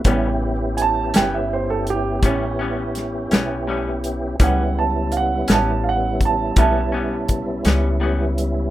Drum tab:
HH |x-xx-xx-xx-x|x-xx-xx-xx-x|
SD |---o----oo--|---o-----o--|
BD |o-----o-----|o----oo-o---|